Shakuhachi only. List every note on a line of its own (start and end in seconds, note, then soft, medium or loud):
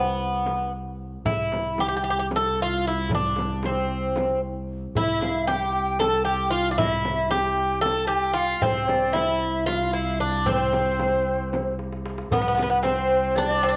4.96 5.24 E5 medium
5.22 5.51 F5 medium
5.49 6.02 G5 medium
6.00 6.27 A5 medium
6.25 6.53 G5 medium
6.52 6.71 F5 medium
6.71 6.81 F5 medium
6.79 7.31 E5 medium
7.32 7.81 G5 medium
7.85 8.14 A5 medium
8.12 8.39 G5 medium
8.38 8.64 F5 medium
8.62 8.91 C5 medium
8.89 9.16 D5 medium
9.15 9.70 E5 medium
9.68 10.20 F5 medium
10.47 11.75 C5 medium
12.30 12.85 B4 medium
12.83 13.37 C5 medium
13.36 13.77 D5 medium